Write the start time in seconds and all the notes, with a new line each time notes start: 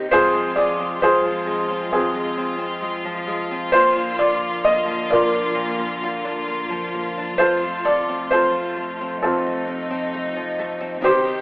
Already playing: C3 D#3
0.08 F2 F3 G#3 F4 C5
0.12 F3 G#3 C4 F4 G#4
0.34 G#3
0.56 G#4 D5
0.80 C4
1.01 G#3 F4 G#4 C5
1.24 F3
1.46 G#3
1.70 C4
1.92 F2 C4 F4 G#4
2.15 G#3
2.37 C4
2.58 C4
2.82 G#3
3.04 F3
3.27 G#3
3.51 C4
3.72 A#2 D3 A#3 F4 C5
3.95 A#3
4.19 F4 D5
4.64 A#3 D#5
4.85 F3
5.10 A#3 F4 A#4 D5
5.34 D4
5.54 A#2
5.79 A#3
6.03 F4
6.25 D4
6.47 A#3
6.69 F3
6.94 A#3
7.17 D4
7.38 F2 C3 F3 A3 F4 A4 C5
7.63 A3
7.85 A4 D5
8.09 C4
8.31 A3 F4 A4 C5
8.51 F3
8.76 A3
9.01 C4
9.22 F2 C4 D#4 F4 A4
9.46 A3
9.68 C4
9.90 C4
10.14 A3
10.36 F3
10.59 A3
10.80 C4
11.01 D#2 D#3 C4 D#4 G4 C5
11.05 D#3 G4
11.25 D#4